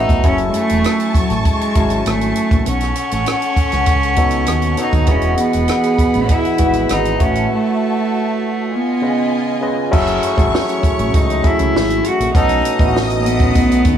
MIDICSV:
0, 0, Header, 1, 8, 480
1, 0, Start_track
1, 0, Tempo, 604839
1, 190, Time_signature, 4, 2, 24, 8
1, 11092, End_track
2, 0, Start_track
2, 0, Title_t, "String section"
2, 0, Program_c, 0, 48
2, 0, Note_on_c, 0, 66, 63
2, 0, Note_on_c, 0, 81, 71
2, 0, Note_on_c, 0, 88, 63
2, 154, Note_off_c, 0, 66, 0
2, 154, Note_off_c, 0, 81, 0
2, 155, Note_off_c, 0, 88, 0
2, 180, Note_on_c, 0, 81, 72
2, 180, Note_on_c, 0, 85, 78
2, 182, Note_on_c, 0, 80, 62
2, 2076, Note_off_c, 0, 81, 0
2, 2076, Note_off_c, 0, 85, 0
2, 2077, Note_off_c, 0, 80, 0
2, 2112, Note_on_c, 0, 78, 70
2, 2112, Note_on_c, 0, 85, 72
2, 2116, Note_on_c, 0, 69, 68
2, 4003, Note_off_c, 0, 78, 0
2, 4003, Note_off_c, 0, 85, 0
2, 4005, Note_off_c, 0, 69, 0
2, 4032, Note_on_c, 0, 68, 71
2, 4033, Note_on_c, 0, 78, 67
2, 4037, Note_on_c, 0, 83, 78
2, 5684, Note_off_c, 0, 68, 0
2, 5685, Note_off_c, 0, 78, 0
2, 5686, Note_off_c, 0, 83, 0
2, 5707, Note_on_c, 0, 76, 64
2, 5707, Note_on_c, 0, 81, 75
2, 5709, Note_on_c, 0, 66, 65
2, 6888, Note_off_c, 0, 81, 0
2, 6889, Note_off_c, 0, 76, 0
2, 6890, Note_off_c, 0, 66, 0
2, 6916, Note_on_c, 0, 65, 80
2, 6917, Note_on_c, 0, 75, 74
2, 6919, Note_on_c, 0, 80, 80
2, 7858, Note_off_c, 0, 65, 0
2, 7858, Note_off_c, 0, 75, 0
2, 7859, Note_off_c, 0, 80, 0
2, 7883, Note_on_c, 0, 73, 83
2, 7883, Note_on_c, 0, 85, 92
2, 9526, Note_off_c, 0, 85, 0
2, 9527, Note_off_c, 0, 73, 0
2, 9784, Note_on_c, 0, 75, 89
2, 9788, Note_on_c, 0, 87, 100
2, 11092, Note_off_c, 0, 75, 0
2, 11092, Note_off_c, 0, 87, 0
2, 11092, End_track
3, 0, Start_track
3, 0, Title_t, "Tine electric piano"
3, 0, Program_c, 1, 4
3, 0, Control_c, 1, 64, 127
3, 0, Note_on_c, 1, 57, 50
3, 0, Note_on_c, 1, 64, 47
3, 0, Note_on_c, 1, 66, 51
3, 0, Note_on_c, 1, 71, 47
3, 0, Note_on_c, 1, 73, 81
3, 0, Note_on_c, 1, 76, 65
3, 127, Note_off_c, 1, 57, 0
3, 127, Note_off_c, 1, 64, 0
3, 128, Note_off_c, 1, 66, 0
3, 131, Note_off_c, 1, 71, 0
3, 132, Note_off_c, 1, 76, 0
3, 187, Note_on_c, 1, 54, 83
3, 189, Note_on_c, 1, 61, 76
3, 192, Note_on_c, 1, 64, 79
3, 197, Note_on_c, 1, 80, 74
3, 198, Note_on_c, 1, 69, 89
3, 201, Control_c, 1, 64, 0
3, 204, Note_off_c, 1, 73, 0
3, 350, Control_c, 1, 64, 127
3, 909, Note_off_c, 1, 54, 0
3, 910, Note_off_c, 1, 61, 0
3, 911, Note_off_c, 1, 64, 0
3, 914, Note_off_c, 1, 80, 0
3, 915, Note_off_c, 1, 69, 0
3, 1390, Note_on_c, 1, 54, 66
3, 1394, Note_on_c, 1, 61, 62
3, 1396, Note_on_c, 1, 64, 56
3, 1400, Note_on_c, 1, 80, 59
3, 1403, Note_on_c, 1, 81, 70
3, 2111, Note_off_c, 1, 54, 0
3, 2114, Note_off_c, 1, 61, 0
3, 2114, Note_off_c, 1, 64, 0
3, 2116, Note_off_c, 1, 80, 0
3, 2118, Note_off_c, 1, 81, 0
3, 2120, Control_c, 1, 64, 0
3, 2245, Control_c, 1, 64, 127
3, 3308, Note_on_c, 1, 47, 77
3, 3313, Note_on_c, 1, 59, 73
3, 3315, Note_on_c, 1, 63, 74
3, 3315, Note_on_c, 1, 69, 70
3, 3321, Note_on_c, 1, 73, 78
3, 3672, Note_off_c, 1, 47, 0
3, 3674, Note_off_c, 1, 59, 0
3, 3675, Note_off_c, 1, 63, 0
3, 3675, Note_off_c, 1, 69, 0
3, 3678, Note_off_c, 1, 73, 0
3, 3785, Note_on_c, 1, 47, 58
3, 3788, Note_on_c, 1, 59, 50
3, 3790, Note_on_c, 1, 63, 48
3, 3794, Note_on_c, 1, 69, 52
3, 3797, Note_on_c, 1, 73, 64
3, 3970, Note_off_c, 1, 47, 0
3, 3972, Note_off_c, 1, 59, 0
3, 3973, Note_off_c, 1, 63, 0
3, 3975, Note_off_c, 1, 69, 0
3, 3976, Note_off_c, 1, 73, 0
3, 4024, Note_on_c, 1, 52, 88
3, 4028, Note_on_c, 1, 59, 84
3, 4031, Note_on_c, 1, 66, 84
3, 4036, Note_on_c, 1, 68, 74
3, 4038, Note_on_c, 1, 75, 92
3, 4046, Control_c, 1, 64, 0
3, 4192, Control_c, 1, 64, 127
3, 4750, Note_off_c, 1, 52, 0
3, 4753, Note_off_c, 1, 59, 0
3, 4754, Note_off_c, 1, 66, 0
3, 4756, Note_off_c, 1, 68, 0
3, 4757, Note_off_c, 1, 75, 0
3, 5225, Note_on_c, 1, 52, 64
3, 5227, Note_on_c, 1, 59, 58
3, 5231, Note_on_c, 1, 66, 61
3, 5233, Note_on_c, 1, 68, 58
3, 5239, Note_on_c, 1, 71, 73
3, 5707, Note_off_c, 1, 66, 0
3, 5711, Note_off_c, 1, 52, 0
3, 5711, Note_off_c, 1, 71, 0
3, 5711, Note_on_c, 1, 57, 61
3, 5712, Note_off_c, 1, 59, 0
3, 5712, Note_on_c, 1, 64, 60
3, 5715, Note_off_c, 1, 68, 0
3, 5717, Note_on_c, 1, 66, 63
3, 5720, Note_on_c, 1, 71, 55
3, 5724, Note_on_c, 1, 73, 73
3, 5728, Control_c, 1, 64, 0
3, 5865, Control_c, 1, 64, 127
3, 6483, Note_off_c, 1, 57, 0
3, 6483, Note_off_c, 1, 64, 0
3, 6486, Note_off_c, 1, 66, 0
3, 6487, Note_off_c, 1, 71, 0
3, 6489, Note_off_c, 1, 73, 0
3, 6928, Control_c, 1, 64, 0
3, 7074, Control_c, 1, 64, 127
3, 7155, Note_on_c, 1, 49, 64
3, 7156, Note_on_c, 1, 61, 56
3, 7162, Note_on_c, 1, 65, 59
3, 7165, Note_on_c, 1, 71, 55
3, 7170, Note_on_c, 1, 75, 67
3, 7516, Note_off_c, 1, 49, 0
3, 7517, Note_off_c, 1, 61, 0
3, 7520, Note_off_c, 1, 65, 0
3, 7521, Note_off_c, 1, 71, 0
3, 7524, Note_off_c, 1, 75, 0
3, 7626, Note_on_c, 1, 49, 66
3, 7631, Note_on_c, 1, 61, 59
3, 7636, Note_on_c, 1, 65, 61
3, 7637, Note_on_c, 1, 71, 57
3, 7641, Note_on_c, 1, 75, 76
3, 7812, Note_off_c, 1, 49, 0
3, 7814, Note_off_c, 1, 61, 0
3, 7817, Note_off_c, 1, 65, 0
3, 7817, Note_off_c, 1, 71, 0
3, 7819, Note_off_c, 1, 75, 0
3, 7865, Note_on_c, 1, 54, 104
3, 7870, Note_on_c, 1, 61, 106
3, 7872, Note_on_c, 1, 64, 102
3, 7875, Note_on_c, 1, 68, 93
3, 7879, Note_on_c, 1, 69, 114
3, 7888, Control_c, 1, 64, 0
3, 8039, Control_c, 1, 64, 127
3, 8141, Note_off_c, 1, 54, 0
3, 8143, Note_off_c, 1, 61, 0
3, 8145, Note_off_c, 1, 64, 0
3, 8146, Note_off_c, 1, 68, 0
3, 8148, Note_off_c, 1, 69, 0
3, 8228, Note_on_c, 1, 54, 65
3, 8232, Note_on_c, 1, 61, 61
3, 8232, Note_on_c, 1, 64, 63
3, 8240, Note_on_c, 1, 68, 62
3, 8241, Note_on_c, 1, 69, 74
3, 8862, Note_off_c, 1, 54, 0
3, 8864, Note_off_c, 1, 61, 0
3, 8864, Note_off_c, 1, 64, 0
3, 8868, Note_off_c, 1, 68, 0
3, 8868, Note_off_c, 1, 69, 0
3, 9073, Note_on_c, 1, 54, 61
3, 9075, Note_on_c, 1, 61, 58
3, 9079, Note_on_c, 1, 64, 59
3, 9084, Note_on_c, 1, 68, 58
3, 9085, Note_on_c, 1, 69, 66
3, 9614, Note_off_c, 1, 54, 0
3, 9615, Note_off_c, 1, 61, 0
3, 9617, Note_off_c, 1, 64, 0
3, 9619, Note_off_c, 1, 68, 0
3, 9620, Note_off_c, 1, 69, 0
3, 9795, Note_on_c, 1, 47, 93
3, 9798, Note_on_c, 1, 59, 88
3, 9800, Note_on_c, 1, 61, 83
3, 9802, Note_on_c, 1, 63, 84
3, 9806, Control_c, 1, 64, 0
3, 9809, Note_on_c, 1, 69, 96
3, 9954, Control_c, 1, 64, 127
3, 10065, Note_off_c, 1, 47, 0
3, 10066, Note_off_c, 1, 59, 0
3, 10067, Note_off_c, 1, 61, 0
3, 10068, Note_off_c, 1, 63, 0
3, 10072, Note_off_c, 1, 69, 0
3, 10153, Note_on_c, 1, 47, 66
3, 10155, Note_on_c, 1, 59, 59
3, 10157, Note_on_c, 1, 61, 66
3, 10159, Note_on_c, 1, 63, 62
3, 10165, Note_on_c, 1, 64, 58
3, 10212, Note_off_c, 1, 64, 0
3, 10216, Note_on_c, 1, 66, 77
3, 10872, Note_off_c, 1, 47, 0
3, 10873, Note_off_c, 1, 59, 0
3, 10874, Note_off_c, 1, 61, 0
3, 10875, Note_off_c, 1, 63, 0
3, 10904, Note_off_c, 1, 66, 0
3, 11092, End_track
4, 0, Start_track
4, 0, Title_t, "Cello"
4, 0, Program_c, 2, 42
4, 0, Note_on_c, 2, 63, 76
4, 201, Note_off_c, 2, 63, 0
4, 214, Note_on_c, 2, 61, 82
4, 291, Note_off_c, 2, 61, 0
4, 387, Note_on_c, 2, 56, 67
4, 451, Note_on_c, 2, 57, 84
4, 463, Note_off_c, 2, 56, 0
4, 921, Note_off_c, 2, 57, 0
4, 928, Note_on_c, 2, 54, 81
4, 1032, Note_off_c, 2, 54, 0
4, 1172, Note_on_c, 2, 56, 82
4, 1610, Note_off_c, 2, 56, 0
4, 1655, Note_on_c, 2, 57, 78
4, 2092, Note_off_c, 2, 57, 0
4, 2130, Note_on_c, 2, 61, 92
4, 3818, Note_on_c, 2, 63, 87
4, 3830, Note_off_c, 2, 61, 0
4, 4053, Note_on_c, 2, 61, 84
4, 4065, Note_off_c, 2, 63, 0
4, 4280, Note_off_c, 2, 61, 0
4, 4285, Note_on_c, 2, 59, 95
4, 5018, Note_on_c, 2, 64, 98
4, 5030, Note_off_c, 2, 59, 0
4, 5491, Note_on_c, 2, 63, 86
4, 5503, Note_off_c, 2, 64, 0
4, 5739, Note_on_c, 2, 61, 87
4, 5751, Note_off_c, 2, 63, 0
4, 5968, Note_off_c, 2, 61, 0
4, 5981, Note_on_c, 2, 57, 82
4, 6939, Note_on_c, 2, 59, 83
4, 6951, Note_off_c, 2, 57, 0
4, 7648, Note_off_c, 2, 59, 0
4, 8383, Note_on_c, 2, 61, 76
4, 8855, Note_on_c, 2, 63, 89
4, 8867, Note_off_c, 2, 61, 0
4, 9097, Note_on_c, 2, 64, 96
4, 9109, Note_off_c, 2, 63, 0
4, 9576, Note_on_c, 2, 66, 100
4, 9588, Note_off_c, 2, 64, 0
4, 9799, Note_off_c, 2, 66, 0
4, 9804, Note_on_c, 2, 63, 86
4, 10247, Note_off_c, 2, 63, 0
4, 10466, Note_on_c, 2, 58, 76
4, 10522, Note_on_c, 2, 59, 114
4, 10534, Note_off_c, 2, 58, 0
4, 11092, Note_off_c, 2, 59, 0
4, 11092, End_track
5, 0, Start_track
5, 0, Title_t, "French horn section"
5, 0, Program_c, 3, 60
5, 7886, Note_on_c, 3, 54, 77
5, 7888, Note_on_c, 3, 66, 70
5, 7892, Note_on_c, 3, 52, 74
5, 7892, Note_on_c, 3, 57, 85
5, 9780, Note_off_c, 3, 54, 0
5, 9781, Note_off_c, 3, 66, 0
5, 9783, Note_off_c, 3, 52, 0
5, 9783, Note_off_c, 3, 57, 0
5, 9798, Note_on_c, 3, 57, 74
5, 9801, Note_on_c, 3, 59, 69
5, 9803, Note_on_c, 3, 61, 88
5, 11092, Note_off_c, 3, 57, 0
5, 11092, Note_off_c, 3, 59, 0
5, 11092, Note_off_c, 3, 61, 0
5, 11092, End_track
6, 0, Start_track
6, 0, Title_t, "Fingered electric bass"
6, 0, Program_c, 4, 33
6, 77, Note_on_c, 4, 35, 76
6, 175, Note_off_c, 4, 35, 0
6, 193, Note_on_c, 4, 30, 94
6, 393, Note_off_c, 4, 30, 0
6, 561, Note_on_c, 4, 28, 78
6, 657, Note_off_c, 4, 28, 0
6, 1035, Note_on_c, 4, 33, 73
6, 1134, Note_off_c, 4, 33, 0
6, 1397, Note_on_c, 4, 32, 74
6, 1597, Note_off_c, 4, 32, 0
6, 1635, Note_on_c, 4, 32, 82
6, 1836, Note_off_c, 4, 32, 0
6, 1998, Note_on_c, 4, 34, 75
6, 2097, Note_off_c, 4, 34, 0
6, 2114, Note_on_c, 4, 35, 84
6, 2315, Note_off_c, 4, 35, 0
6, 2478, Note_on_c, 4, 33, 72
6, 2577, Note_off_c, 4, 33, 0
6, 2959, Note_on_c, 4, 37, 65
6, 3527, Note_off_c, 4, 37, 0
6, 3556, Note_on_c, 4, 39, 79
6, 3757, Note_off_c, 4, 39, 0
6, 3913, Note_on_c, 4, 39, 79
6, 4032, Note_on_c, 4, 28, 93
6, 4044, Note_off_c, 4, 39, 0
6, 4236, Note_off_c, 4, 28, 0
6, 4399, Note_on_c, 4, 28, 77
6, 4498, Note_off_c, 4, 28, 0
6, 4883, Note_on_c, 4, 33, 68
6, 4981, Note_off_c, 4, 33, 0
6, 5237, Note_on_c, 4, 32, 85
6, 5439, Note_off_c, 4, 32, 0
6, 5480, Note_on_c, 4, 32, 90
6, 5681, Note_off_c, 4, 32, 0
6, 5719, Note_on_c, 4, 33, 82
6, 5920, Note_off_c, 4, 33, 0
6, 7882, Note_on_c, 4, 30, 98
6, 8082, Note_off_c, 4, 30, 0
6, 8240, Note_on_c, 4, 32, 83
6, 8340, Note_off_c, 4, 32, 0
6, 8724, Note_on_c, 4, 33, 81
6, 8822, Note_off_c, 4, 33, 0
6, 8846, Note_on_c, 4, 37, 84
6, 9044, Note_off_c, 4, 37, 0
6, 9204, Note_on_c, 4, 37, 72
6, 9302, Note_off_c, 4, 37, 0
6, 9325, Note_on_c, 4, 32, 84
6, 9523, Note_off_c, 4, 32, 0
6, 9683, Note_on_c, 4, 34, 82
6, 9781, Note_off_c, 4, 34, 0
6, 9804, Note_on_c, 4, 35, 102
6, 10002, Note_off_c, 4, 35, 0
6, 10158, Note_on_c, 4, 33, 84
6, 10725, Note_off_c, 4, 33, 0
6, 10762, Note_on_c, 4, 35, 100
6, 10960, Note_off_c, 4, 35, 0
6, 10996, Note_on_c, 4, 39, 74
6, 11092, Note_off_c, 4, 39, 0
6, 11092, End_track
7, 0, Start_track
7, 0, Title_t, "Muted fingered electric bass strokes"
7, 914, Note_on_c, 9, 29, 41
7, 993, Note_off_c, 9, 29, 0
7, 1276, Note_on_c, 9, 29, 39
7, 1356, Note_off_c, 9, 29, 0
7, 2832, Note_on_c, 9, 29, 42
7, 2911, Note_off_c, 9, 29, 0
7, 4753, Note_on_c, 9, 29, 43
7, 4832, Note_off_c, 9, 29, 0
7, 5125, Note_on_c, 9, 29, 38
7, 5205, Note_off_c, 9, 29, 0
7, 8600, Note_on_c, 9, 29, 46
7, 8680, Note_off_c, 9, 29, 0
7, 11092, End_track
8, 0, Start_track
8, 0, Title_t, "Drums"
8, 72, Note_on_c, 9, 36, 76
8, 76, Note_on_c, 9, 42, 47
8, 152, Note_off_c, 9, 36, 0
8, 156, Note_off_c, 9, 42, 0
8, 187, Note_on_c, 9, 42, 74
8, 190, Note_on_c, 9, 36, 90
8, 266, Note_off_c, 9, 42, 0
8, 269, Note_off_c, 9, 36, 0
8, 302, Note_on_c, 9, 42, 36
8, 382, Note_off_c, 9, 42, 0
8, 427, Note_on_c, 9, 42, 61
8, 506, Note_off_c, 9, 42, 0
8, 551, Note_on_c, 9, 42, 50
8, 631, Note_off_c, 9, 42, 0
8, 669, Note_on_c, 9, 42, 73
8, 682, Note_on_c, 9, 37, 100
8, 749, Note_off_c, 9, 42, 0
8, 761, Note_off_c, 9, 37, 0
8, 791, Note_on_c, 9, 42, 43
8, 871, Note_off_c, 9, 42, 0
8, 909, Note_on_c, 9, 36, 78
8, 914, Note_on_c, 9, 42, 66
8, 988, Note_off_c, 9, 36, 0
8, 993, Note_off_c, 9, 42, 0
8, 1032, Note_on_c, 9, 42, 38
8, 1038, Note_on_c, 9, 37, 26
8, 1111, Note_off_c, 9, 42, 0
8, 1117, Note_off_c, 9, 37, 0
8, 1153, Note_on_c, 9, 36, 75
8, 1153, Note_on_c, 9, 42, 73
8, 1232, Note_off_c, 9, 42, 0
8, 1233, Note_off_c, 9, 36, 0
8, 1281, Note_on_c, 9, 42, 40
8, 1360, Note_off_c, 9, 42, 0
8, 1391, Note_on_c, 9, 42, 64
8, 1393, Note_on_c, 9, 36, 73
8, 1470, Note_off_c, 9, 42, 0
8, 1472, Note_off_c, 9, 36, 0
8, 1508, Note_on_c, 9, 42, 42
8, 1587, Note_off_c, 9, 42, 0
8, 1634, Note_on_c, 9, 42, 81
8, 1647, Note_on_c, 9, 37, 90
8, 1713, Note_off_c, 9, 42, 0
8, 1726, Note_off_c, 9, 37, 0
8, 1756, Note_on_c, 9, 42, 44
8, 1835, Note_off_c, 9, 42, 0
8, 1869, Note_on_c, 9, 42, 62
8, 1949, Note_off_c, 9, 42, 0
8, 1994, Note_on_c, 9, 36, 84
8, 1995, Note_on_c, 9, 42, 49
8, 2073, Note_off_c, 9, 36, 0
8, 2075, Note_off_c, 9, 42, 0
8, 2112, Note_on_c, 9, 42, 78
8, 2191, Note_off_c, 9, 42, 0
8, 2226, Note_on_c, 9, 42, 42
8, 2244, Note_on_c, 9, 37, 28
8, 2305, Note_off_c, 9, 42, 0
8, 2323, Note_off_c, 9, 37, 0
8, 2345, Note_on_c, 9, 42, 60
8, 2425, Note_off_c, 9, 42, 0
8, 2471, Note_on_c, 9, 42, 45
8, 2551, Note_off_c, 9, 42, 0
8, 2589, Note_on_c, 9, 42, 76
8, 2602, Note_on_c, 9, 37, 112
8, 2668, Note_off_c, 9, 42, 0
8, 2681, Note_off_c, 9, 37, 0
8, 2712, Note_on_c, 9, 42, 43
8, 2791, Note_off_c, 9, 42, 0
8, 2829, Note_on_c, 9, 36, 71
8, 2833, Note_on_c, 9, 42, 64
8, 2909, Note_off_c, 9, 36, 0
8, 2912, Note_off_c, 9, 42, 0
8, 2951, Note_on_c, 9, 42, 40
8, 2957, Note_on_c, 9, 37, 29
8, 3030, Note_off_c, 9, 42, 0
8, 3036, Note_off_c, 9, 37, 0
8, 3064, Note_on_c, 9, 42, 75
8, 3071, Note_on_c, 9, 36, 77
8, 3144, Note_off_c, 9, 42, 0
8, 3150, Note_off_c, 9, 36, 0
8, 3198, Note_on_c, 9, 42, 38
8, 3278, Note_off_c, 9, 42, 0
8, 3304, Note_on_c, 9, 42, 68
8, 3310, Note_on_c, 9, 36, 72
8, 3384, Note_off_c, 9, 42, 0
8, 3390, Note_off_c, 9, 36, 0
8, 3418, Note_on_c, 9, 42, 42
8, 3497, Note_off_c, 9, 42, 0
8, 3544, Note_on_c, 9, 42, 85
8, 3557, Note_on_c, 9, 37, 103
8, 3623, Note_off_c, 9, 42, 0
8, 3636, Note_off_c, 9, 37, 0
8, 3666, Note_on_c, 9, 42, 44
8, 3745, Note_off_c, 9, 42, 0
8, 3787, Note_on_c, 9, 42, 61
8, 3866, Note_off_c, 9, 42, 0
8, 3911, Note_on_c, 9, 36, 80
8, 3911, Note_on_c, 9, 42, 47
8, 3991, Note_off_c, 9, 36, 0
8, 3991, Note_off_c, 9, 42, 0
8, 4021, Note_on_c, 9, 42, 75
8, 4028, Note_on_c, 9, 36, 96
8, 4100, Note_off_c, 9, 42, 0
8, 4108, Note_off_c, 9, 36, 0
8, 4139, Note_on_c, 9, 42, 42
8, 4218, Note_off_c, 9, 42, 0
8, 4266, Note_on_c, 9, 42, 62
8, 4345, Note_off_c, 9, 42, 0
8, 4390, Note_on_c, 9, 42, 48
8, 4469, Note_off_c, 9, 42, 0
8, 4506, Note_on_c, 9, 42, 74
8, 4519, Note_on_c, 9, 37, 106
8, 4586, Note_off_c, 9, 42, 0
8, 4598, Note_off_c, 9, 37, 0
8, 4631, Note_on_c, 9, 42, 41
8, 4710, Note_off_c, 9, 42, 0
8, 4750, Note_on_c, 9, 36, 74
8, 4753, Note_on_c, 9, 42, 68
8, 4829, Note_off_c, 9, 36, 0
8, 4833, Note_off_c, 9, 42, 0
8, 4871, Note_on_c, 9, 42, 40
8, 4950, Note_off_c, 9, 42, 0
8, 4991, Note_on_c, 9, 42, 78
8, 4994, Note_on_c, 9, 36, 80
8, 5070, Note_off_c, 9, 42, 0
8, 5073, Note_off_c, 9, 36, 0
8, 5118, Note_on_c, 9, 42, 39
8, 5197, Note_off_c, 9, 42, 0
8, 5224, Note_on_c, 9, 42, 70
8, 5233, Note_on_c, 9, 36, 74
8, 5303, Note_off_c, 9, 42, 0
8, 5312, Note_off_c, 9, 36, 0
8, 5345, Note_on_c, 9, 42, 45
8, 5424, Note_off_c, 9, 42, 0
8, 5469, Note_on_c, 9, 42, 86
8, 5482, Note_on_c, 9, 37, 100
8, 5549, Note_off_c, 9, 42, 0
8, 5562, Note_off_c, 9, 37, 0
8, 5597, Note_on_c, 9, 42, 42
8, 5676, Note_off_c, 9, 42, 0
8, 5714, Note_on_c, 9, 42, 65
8, 5716, Note_on_c, 9, 36, 83
8, 5793, Note_off_c, 9, 42, 0
8, 5795, Note_off_c, 9, 36, 0
8, 5837, Note_on_c, 9, 42, 48
8, 5916, Note_off_c, 9, 42, 0
8, 7881, Note_on_c, 9, 36, 99
8, 7882, Note_on_c, 9, 49, 89
8, 7960, Note_off_c, 9, 36, 0
8, 7962, Note_off_c, 9, 49, 0
8, 7994, Note_on_c, 9, 42, 40
8, 8073, Note_off_c, 9, 42, 0
8, 8117, Note_on_c, 9, 42, 69
8, 8196, Note_off_c, 9, 42, 0
8, 8236, Note_on_c, 9, 36, 77
8, 8243, Note_on_c, 9, 42, 54
8, 8315, Note_off_c, 9, 36, 0
8, 8323, Note_off_c, 9, 42, 0
8, 8372, Note_on_c, 9, 38, 124
8, 8451, Note_off_c, 9, 38, 0
8, 8483, Note_on_c, 9, 42, 52
8, 8562, Note_off_c, 9, 42, 0
8, 8598, Note_on_c, 9, 36, 80
8, 8604, Note_on_c, 9, 42, 64
8, 8677, Note_off_c, 9, 36, 0
8, 8683, Note_off_c, 9, 42, 0
8, 8722, Note_on_c, 9, 42, 39
8, 8801, Note_off_c, 9, 42, 0
8, 8841, Note_on_c, 9, 36, 80
8, 8841, Note_on_c, 9, 42, 82
8, 8920, Note_off_c, 9, 36, 0
8, 8920, Note_off_c, 9, 42, 0
8, 8968, Note_on_c, 9, 42, 39
8, 9047, Note_off_c, 9, 42, 0
8, 9079, Note_on_c, 9, 42, 71
8, 9080, Note_on_c, 9, 36, 74
8, 9159, Note_off_c, 9, 42, 0
8, 9160, Note_off_c, 9, 36, 0
8, 9198, Note_on_c, 9, 42, 50
8, 9277, Note_off_c, 9, 42, 0
8, 9337, Note_on_c, 9, 38, 101
8, 9416, Note_off_c, 9, 38, 0
8, 9446, Note_on_c, 9, 42, 50
8, 9525, Note_off_c, 9, 42, 0
8, 9558, Note_on_c, 9, 42, 64
8, 9638, Note_off_c, 9, 42, 0
8, 9686, Note_on_c, 9, 42, 50
8, 9765, Note_off_c, 9, 42, 0
8, 9799, Note_on_c, 9, 36, 104
8, 9801, Note_on_c, 9, 42, 85
8, 9879, Note_off_c, 9, 36, 0
8, 9880, Note_off_c, 9, 42, 0
8, 9913, Note_on_c, 9, 42, 43
8, 9992, Note_off_c, 9, 42, 0
8, 10039, Note_on_c, 9, 42, 66
8, 10119, Note_off_c, 9, 42, 0
8, 10153, Note_on_c, 9, 36, 87
8, 10161, Note_on_c, 9, 42, 48
8, 10233, Note_off_c, 9, 36, 0
8, 10241, Note_off_c, 9, 42, 0
8, 10289, Note_on_c, 9, 38, 111
8, 10368, Note_off_c, 9, 38, 0
8, 10397, Note_on_c, 9, 42, 50
8, 10477, Note_off_c, 9, 42, 0
8, 10524, Note_on_c, 9, 42, 69
8, 10603, Note_off_c, 9, 42, 0
8, 10634, Note_on_c, 9, 36, 88
8, 10636, Note_on_c, 9, 42, 42
8, 10714, Note_off_c, 9, 36, 0
8, 10716, Note_off_c, 9, 42, 0
8, 10756, Note_on_c, 9, 36, 82
8, 10756, Note_on_c, 9, 42, 80
8, 10835, Note_off_c, 9, 36, 0
8, 10835, Note_off_c, 9, 42, 0
8, 10885, Note_on_c, 9, 42, 43
8, 10964, Note_off_c, 9, 42, 0
8, 10989, Note_on_c, 9, 42, 73
8, 10993, Note_on_c, 9, 36, 88
8, 11068, Note_off_c, 9, 42, 0
8, 11073, Note_off_c, 9, 36, 0
8, 11092, End_track
0, 0, End_of_file